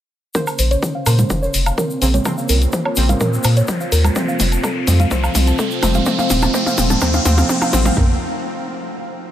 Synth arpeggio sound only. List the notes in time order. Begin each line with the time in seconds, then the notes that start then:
0.35 A#4
0.59 C5
0.71 C#5
0.95 F5
1.06 A#4
1.30 C5
1.42 C#5
1.66 F5
1.78 A#4
2.02 C5
2.14 C#5
2.38 F5
2.49 A#4
2.73 C5
2.85 C#5
3.09 F5
3.21 A#4
3.44 C5
3.57 C#5
3.81 F5
3.92 A#4
4.16 C5
4.28 F5
4.52 A5
4.64 A4
4.87 C5
5.00 F5
5.11 C5
5.23 F5
5.47 A5
5.59 A4
5.83 C5
5.95 F5
6.06 C5
6.19 F5
6.43 A5
6.54 C5
6.66 F5
6.90 A5
7.02 C5
7.14 F5
7.25 C5
7.38 F5
7.49 C5
7.62 F5
7.73 C5
7.85 F5
7.97 A#4